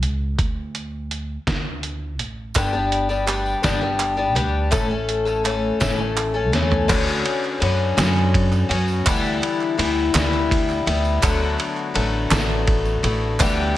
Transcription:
0.02 C#2, closed hi-hat
0.39 D2, kick, closed hi-hat
0.75 closed hi-hat
1.11 closed hi-hat
1.47 D2, kick, snare, closed hi-hat
1.83 closed hi-hat
2.19 A1, closed hi-hat
2.54 G1 G2 D3 G3 B3 D4 G4, kick, clap, closed hi-hat, tambourine
2.73 G3 B3 D4 G4
2.92 closed hi-hat
3.09 G3 B3 D4 G4, tambourine
3.27 G3 B3 D4 G4, clap, closed hi-hat, tambourine
3.46 tambourine
3.63 G1 G2 D3 G3 B3 D4 G4, kick, snare, closed hi-hat, tambourine
3.81 G3 B3 D4 G4
4.00 clap, closed hi-hat
4.17 G3 B3 D4 G4
4.35 D2 G3 B3 D4 G4, clap, closed hi-hat
4.71 A1 A2 E3 A3 C#4 A4, kick, clap, closed hi-hat, tambourine
4.90 A3 C#4 A4
5.09 closed hi-hat
5.25 A3 C#4 A4, clap, tambourine
5.44 E3 A3 C#4 A4, clap, closed hi-hat, tambourine
5.80 A1 A2 E3 A3 C#4 A4, kick, snare, clap, closed hi-hat, tambourine
5.98 A3 C#4 A4
6.17 clap, closed hi-hat
6.34 A3 C#4 A4
6.52 E2 E3 A3 C#4 A4, snare, clap, closed hi-hat
6.72 clap, floor tom
6.88 D2 D3 B3 C#4 F#4, kick, clap, crash, ride, tambourine
7.07 tambourine
7.26 clap, ride
7.45 clap
7.60 F#2 D3 B3 C#4 F#4, ride
7.97 F#2 D3 B3 C#4 F#4, snare, clap, ride, tambourine
8.17 clap
8.34 kick, ride
8.52 clap, tambourine
8.69 F#2 B3 C#4 F#4, ride
8.88 tambourine
9.06 D2 D3 E3 G3 B3 E4, kick, clap, ride, tambourine
9.25 tambourine
9.43 clap, ride
9.61 clap
9.78 D2 E3 G3 B3 E4, ride
10.14 D2 D3 E3 G3 B3 E4, snare, clap, ride, tambourine
10.33 clap
10.51 kick, ride
10.69 clap, tambourine
10.86 D2 G3 B3 E4, ride
11.05 tambourine
11.22 D2 D3 F#3 A3 B3 F#4, kick, clap, ride, tambourine
11.59 clap, ride
11.77 clap
11.94 A1 F#3 A3 B3 F#4, ride
12.31 A1 D3 F#3 A3 B3 F#4, snare, clap, ride, tambourine
12.50 clap
12.67 kick, ride
12.85 tambourine
13.03 A1 A3 B3 F#4, ride
13.39 D2 D3 E3 G3 B3 G4, kick, clap, ride, tambourine

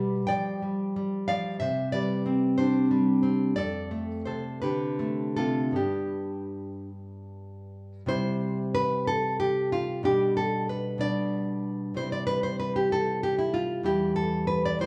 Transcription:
Already playing: B2 G3 G4 B4
0.27 F3 D5 G5
0.62 G3
0.96 G3
1.28 F3 D5 F5
1.60 C3 C5 E5
1.92 G3 B4 D5
2.26 C4
2.58 D4 G4 C5
2.91 G3
3.23 C4
3.56 F2 A4 D5
3.91 A3
4.25 C3 A4 C5
4.62 D3 G4 B4
4.99 A3
5.37 C3 F4 A4
5.71 G2 B3
5.76 D4 G4
8.06 C3 G3 E4 C5
8.75 B4
9.07 A4
9.40 G4
9.72 F4
10.03 B2 G3 D4 G4
10.37 A4
10.69 B4
10.98 B2 G3 D4 D5
11.94 C3 G3 E4 C5
12.12 D5
12.27 B4
12.43 C5
12.60 B4
12.76 G4
12.92 A4
13.23 G4
13.39 E4
13.54 F4
13.83 E2 G3 E4 G4
14.16 A4
14.47 B4
14.65 D5
14.79 E2 G3 E4 C5

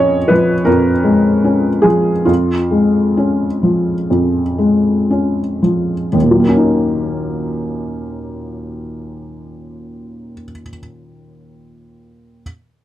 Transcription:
Already playing: F2 F3 C#4 C#5 D#5
0.28 F3 B4
0.65 F2 A#4
1.04 G#3
1.44 C#4
1.82 F3 G#4
2.25 F2 F4
2.71 G#3
3.17 C#4
3.63 F3
4.10 F2
4.58 G#3
5.11 C#4
5.63 F3
6.13 D#2
6.22 A#2
6.31 F#3
6.40 A#3
6.48 C#4
6.57 D#4

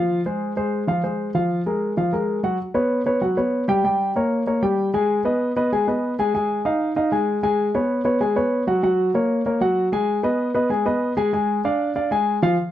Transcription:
Already playing: F3 F4 F5
0.26 G#3 G#4 C5
0.56 G#3 G#4 C5
0.87 F3 F4 F5
1.03 G#3 G#4 C5
1.35 F3 F4 F5
1.66 G#3 G#4 A#4
1.97 F3 F4 F5
2.13 G#3 G#4 A#4
2.43 F#3 F#4 F#5
2.74 B3 B4 C#5
3.06 B3 B4 C#5
3.21 F#3 F#4 F#5
3.37 B3 B4 C#5
3.68 G3 G4 G5
3.84 G3 G4 G5
4.16 A#3 A#4 C#5
4.47 A#3 A#4 C#5
4.62 G3 G4 G5
4.94 G#3 G#4 G#5
5.25 B3 B4 D#5
5.56 B3 B4 D#5
5.72 G#3 G#4 G#5
5.88 B3 B4 D#5
6.19 G#3 G#4 G#5
6.34 G#3 G#4 G#5
6.65 D#4 D#5 F5
6.96 D#4 D#5 F5
7.12 G#3 G#4 G#5
7.43 G#3 G#4 G#5
7.75 B3 B4 C#5
8.05 B3 B4 C#5
8.20 G#3 G#4 G#5
8.36 B3 B4 C#5
8.67 F#3 F#4 F#5
8.83 F#3 F#4 F#5
9.14 A#3 A#4 C#5
9.46 A#3 A#4 C#5
9.61 F#3 F#4 F#5
9.92 G#3 G#4 G#5
10.23 B3 B4 D#5
10.54 B3 B4 D#5
10.69 G#3 G#4 G#5
10.86 B3 B4 D#5
11.17 G#3 G#4 G#5
11.33 G#3 G#4 G#5
11.64 D4 D5 F5
11.95 D4 D5 F5
12.11 G#3 G#4 G#5
12.42 F3 F4 F5

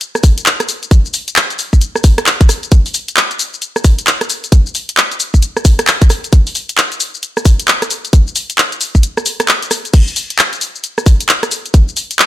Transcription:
0.01 closed hi-hat, shaker
0.15 cross-stick, shaker
0.24 kick, open hi-hat, shaker
0.38 closed hi-hat, shaker
0.46 clap, shaker
0.60 cross-stick, closed hi-hat, shaker
0.69 open hi-hat, shaker
0.83 closed hi-hat, shaker
0.91 kick, closed hi-hat, shaker
1.05 shaker
1.14 open hi-hat, shaker
1.28 closed hi-hat, shaker
1.36 clap, shaker
1.50 closed hi-hat, shaker
1.59 open hi-hat, shaker
1.73 kick, shaker
1.81 closed hi-hat, shaker
1.96 cross-stick, shaker
2.04 kick, open hi-hat, shaker
2.18 cross-stick, closed hi-hat, shaker
2.26 clap, open hi-hat, shaker
2.41 kick, closed hi-hat, shaker
2.49 cross-stick, open hi-hat, shaker
2.63 closed hi-hat, shaker
2.72 kick, closed hi-hat, shaker
2.86 open hi-hat, shaker
2.94 open hi-hat, shaker
3.08 closed hi-hat, shaker
3.17 clap, shaker
3.31 closed hi-hat, shaker
3.39 open hi-hat, shaker
3.53 shaker
3.62 closed hi-hat, shaker
3.76 cross-stick, shaker
3.84 kick, open hi-hat, shaker
3.99 closed hi-hat, shaker
4.07 clap, shaker
4.21 cross-stick, closed hi-hat, shaker
4.30 open hi-hat, shaker
4.44 closed hi-hat, shaker
4.52 kick, closed hi-hat, shaker
4.66 shaker
4.75 open hi-hat, shaker
4.89 closed hi-hat, shaker
4.97 clap, shaker
5.12 closed hi-hat, shaker
5.20 open hi-hat, shaker
5.34 kick, shaker
5.42 closed hi-hat, shaker
5.57 cross-stick, shaker
5.65 kick, open hi-hat, shaker
5.79 cross-stick, closed hi-hat, shaker
5.87 clap, open hi-hat, shaker
6.02 kick, closed hi-hat, shaker
6.10 cross-stick, open hi-hat, shaker
6.24 closed hi-hat, shaker
6.33 kick, closed hi-hat, shaker
6.47 open hi-hat, shaker
6.55 open hi-hat, shaker
6.69 closed hi-hat, shaker
6.78 clap, shaker
6.92 closed hi-hat, shaker
7.00 open hi-hat, shaker
7.14 shaker
7.23 closed hi-hat, shaker
7.37 cross-stick, shaker
7.45 kick, open hi-hat, shaker
7.60 closed hi-hat, shaker
7.68 clap, shaker
7.82 cross-stick, closed hi-hat, shaker
7.91 open hi-hat, shaker
8.05 closed hi-hat, shaker
8.13 kick, closed hi-hat, shaker
8.27 shaker
8.36 open hi-hat, shaker
8.50 closed hi-hat, shaker
8.58 clap, shaker
8.72 closed hi-hat, shaker
8.81 open hi-hat, shaker
8.95 kick, shaker
9.03 closed hi-hat, shaker
9.17 cross-stick, shaker
9.26 open hi-hat, shaker
9.40 cross-stick, closed hi-hat, shaker
9.48 clap, open hi-hat, shaker
9.62 closed hi-hat, shaker
9.71 cross-stick, open hi-hat, shaker
9.85 closed hi-hat, shaker
9.94 kick, closed hi-hat, crash, shaker
10.08 open hi-hat, shaker
10.16 open hi-hat, shaker
10.30 closed hi-hat, shaker
10.39 clap, shaker
10.53 closed hi-hat, shaker
10.61 open hi-hat, shaker
10.75 shaker
10.84 closed hi-hat, shaker
10.98 cross-stick, shaker
11.06 kick, open hi-hat, shaker
11.20 closed hi-hat, shaker
11.29 clap, shaker
11.43 cross-stick, closed hi-hat, shaker
11.51 open hi-hat, shaker
11.66 closed hi-hat, shaker
11.74 kick, closed hi-hat, shaker
11.88 shaker
11.97 open hi-hat, shaker
12.11 closed hi-hat, shaker
12.19 clap, shaker

